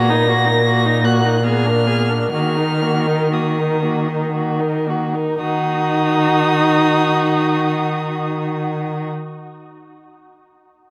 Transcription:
Already playing: cello A#2, viola A#3, violin F#4 A#6
0.09 viola D#4, violin A#4
0.28 viola A#3, violin F#4
0.45 viola D#4, violin A#4
0.64 viola A#3, violin F#4
0.85 viola D#4, violin A#4
1.04 viola A#3, violin F#4 F#6
1.25 viola D#4, violin A#4
1.43 viola B3, violin G#4 F6
1.64 viola D4, violin A#4
1.86 viola B3, violin G#4
2.09 viola D4, violin A#4
2.32 cello D#3, viola A#3, violin F#4 F6
2.57 viola D#4, violin A#4
2.82 viola A#3, violin F#4
3.06 viola D#4, violin A#4
3.32 viola A#3, violin F#4 D#6
3.58 viola D#4, violin A#4
3.83 viola A#3, violin F#4
4.08 viola D#4, violin A#4
4.33 viola A#3, violin F#4
4.59 viola D#4, violin A#4
4.87 viola A#3, violin F#4
5.14 viola D#4, violin A#4
5.38 cello D#3, viola D#4, violin F#4 D#6

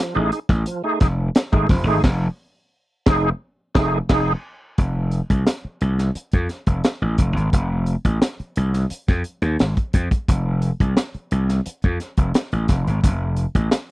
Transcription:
0.00 tonewheel organ F3
0.15 slap bass A1, tonewheel organ A3 D#4 G#4
0.32 tonewheel organ D#4 G#4, closed hi-hat
0.49 slap bass A1, kick, snare
0.66 tonewheel organ F3, closed hi-hat
0.84 tonewheel organ A3 D#4 G#4
1.00 slap bass F1, tonewheel organ D#4 G#4, kick, snare, closed hi-hat
1.35 snare, closed hi-hat
1.52 slap bass G#1, tonewheel organ A3 D#4 G#4, kick
1.69 slap bass F1, tonewheel organ F3, kick, snare, open hi-hat
1.87 slap bass G#1, tonewheel organ A3 D#4 G#4
2.04 slap bass F1, kick, snare, crash
3.06 slap bass F1, tonewheel organ D#4 G#4, kick, snare
3.75 slap bass F1, tonewheel organ A3 D#4 G#4, kick, snare
4.09 slap bass F1, tonewheel organ D#4 G#4, kick, snare, crash
4.78 slap bass F1, kick, closed hi-hat
5.11 closed hi-hat
5.30 slap bass C2, kick, closed hi-hat
5.47 snare, closed hi-hat
5.65 muted slap bass stroke
5.81 slap bass C2, closed hi-hat
5.99 snare, closed hi-hat
6.15 muted slap bass stroke, closed hi-hat
6.32 slap bass F2, kick, closed hi-hat
6.49 snare, closed hi-hat
6.67 slap bass F1, kick, closed hi-hat
6.84 snare, closed hi-hat
7.02 slap bass A1
7.18 slap bass F1, kick, closed hi-hat
7.36 slap bass G#1, closed hi-hat
7.53 slap bass F1, kick, closed hi-hat
7.86 closed hi-hat
8.05 slap bass A1, kick, closed hi-hat
8.22 snare, closed hi-hat
8.40 muted slap bass stroke, closed hi-hat
8.56 slap bass C2, closed hi-hat
8.74 snare, closed hi-hat
8.90 muted slap bass stroke, closed hi-hat
9.08 slap bass F2, kick, snare
9.24 closed hi-hat
9.42 slap bass D#2, closed hi-hat
9.59 slap bass G#1, snare, closed hi-hat
9.77 kick, closed hi-hat
9.93 slap bass F2, kick, closed hi-hat
10.11 kick, closed hi-hat
10.28 slap bass F1, kick, closed hi-hat
10.62 closed hi-hat
10.80 slap bass C2, kick, closed hi-hat
10.97 snare, closed hi-hat
11.14 muted slap bass stroke, closed hi-hat
11.31 slap bass C2, closed hi-hat
11.49 snare, closed hi-hat
11.66 muted slap bass stroke, closed hi-hat
11.82 slap bass F2, kick, closed hi-hat
12.00 snare, closed hi-hat
12.17 slap bass F1, kick, closed hi-hat
12.34 snare, closed hi-hat
12.52 slap bass A1, closed hi-hat
12.68 slap bass F1, kick, snare, closed hi-hat
12.87 slap bass G#1, closed hi-hat
13.04 slap bass F1, kick, closed hi-hat
13.37 closed hi-hat
13.55 slap bass A1, kick, closed hi-hat
13.71 snare, closed hi-hat

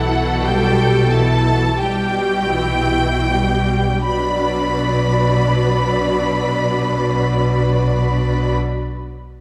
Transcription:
Already playing: double bass section B1, cello section B2, viola section E3 E4, violin section A4 F#5
0.45 viola section G3 G4, violin section G5
1.11 viola section E3 E4, violin section A5
1.79 double bass section B1, cello section B2, viola section G3 G4, violin section G4 G5
2.52 viola section E3 E4
3.30 viola section G3 G4
4.06 double bass section B1, cello section B2, viola section F#3 D4, violin section B4 D5 B5

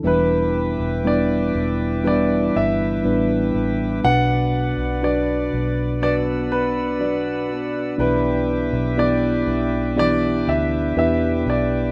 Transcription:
0.03 fingered electric bass E1, steel-string acoustic guitar E2 B2 E3 G3 D4 E4, tine electric piano E3 G3 B3 D4 E4 B4, accordion B4 E5 G5 D6, grand piano B4
0.80 fingered electric bass E1
1.04 steel-string acoustic guitar E3 G3 D4 E4, tine electric piano G3 B3 D4 E4 B4, grand piano D5
1.55 fingered electric bass E1, steel-string acoustic guitar E3 G3 D4 E4
2.04 steel-string acoustic guitar E2 B2 E3 G3 D4 E4, tine electric piano G3 B3 D4 E4 B4, grand piano D5
2.56 fingered electric bass G1, grand piano E5
3.03 fingered electric bass A1, steel-string acoustic guitar E3 G3 D4 E4, tine electric piano G3 B3 D4 E4 B4
3.54 fingered electric bass A1, steel-string acoustic guitar E3 G3 D4 E4
4.04 fingered electric bass B1, steel-string acoustic guitar B2 F#3 B3 D4 F#4, tine electric piano B2 D4 F#4 B4, accordion D5 F#5, grand piano F#5
4.78 fingered electric bass B1
5.03 steel-string acoustic guitar F#3 B3 D4 F#4, tine electric piano D4 F#4 B4, grand piano D5
5.52 fingered electric bass B1, steel-string acoustic guitar B3 D4 F#4
6.01 steel-string acoustic guitar B2 F#3 B3 D4 F#4, tine electric piano D4 F#4 B4, grand piano D5, accordion E6
6.52 grand piano B4
6.99 steel-string acoustic guitar F#3 B3 D4, tine electric piano D4 F#4 D5
7.04 steel-string acoustic guitar F#4
7.49 steel-string acoustic guitar B3 D4 F#4
7.98 fingered electric bass B1, tine electric piano B2 B3 D4 E4 G4 D5, steel-string acoustic guitar B2 E3 G3 D4 E4, grand piano B4, accordion E5 G5 D6
8.73 fingered electric bass B1
8.97 steel-string acoustic guitar E3 G3 D4 E4, tine electric piano B3 D4 E4 G4 D5, grand piano D5
9.47 fingered electric bass B1, steel-string acoustic guitar G3 D4 E4
9.96 steel-string acoustic guitar B2 E3 G3 D4 E4, tine electric piano B3 D4 E4 G4 D5, grand piano D5
10.48 fingered electric bass D2, grand piano E5
10.96 fingered electric bass E2, steel-string acoustic guitar E3 G3 D4 E4, tine electric piano B3 D4 E4 G4 B4, grand piano E5
11.45 fingered electric bass B1, steel-string acoustic guitar G3 D4 E4
11.50 grand piano D5

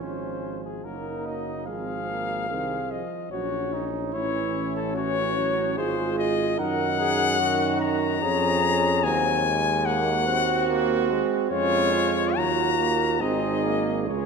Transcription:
Already playing: trumpet C#4
0.01 bass trombone G#1, trombone F3, french horn G#3, trumpet C5
0.64 trumpet G#4
0.84 bass trombone F#1, trombone F#3, french horn A#3, trumpet D#4 A#4
1.26 trumpet D#5
1.66 bass trombone G#1, trombone F3, french horn C4, trumpet G#4 F5
2.09 french horn A#3
2.49 bass trombone C2, trombone D#3, french horn C4, trumpet G#4
2.91 trombone F3, trumpet D#5
3.31 bass trombone A#1, trombone F#3, french horn C#4, trumpet F#4 C#5
3.73 trumpet D#4
4.13 bass trombone A1, trombone E3, french horn C#4, trumpet E4 C#5
4.76 trumpet A4
4.95 trombone E3, trumpet F#4 C#5
5.37 trombone F#3
5.77 bass trombone G#1, trombone G#3, french horn F4, trumpet G#4 C5
6.18 trumpet D#5
6.58 bass trombone F#2, trombone D#3, french horn D#4, trumpet A#4 F#5
7.00 trumpet G#4
7.39 trombone D#3, french horn D#4, trumpet F#4
7.80 trumpet A#5
8.22 bass trombone F2, trombone F3, french horn C#4, trumpet G#4
8.63 french horn C#4
9.03 bass trombone D#2, trombone F#3, french horn C4, trumpet G#5
9.45 trombone G#3
9.85 french horn A#3, trumpet F#4 F#5
10.27 french horn C4
10.69 trombone A#3
11.10 trombone G#3
11.50 bass trombone F2, trombone G#3, french horn C#4, trumpet F4 C#5
11.93 french horn F4
12.35 bass trombone D#2, trombone F#3, trumpet F#4 A#5
12.78 trombone A#3
13.21 bass trombone G#1, trombone C4, french horn D#4, trumpet G#4 D#5
13.64 trombone A#3
14.07 bass trombone C#2, trombone G#3, french horn F4, trumpet G#4 C#5

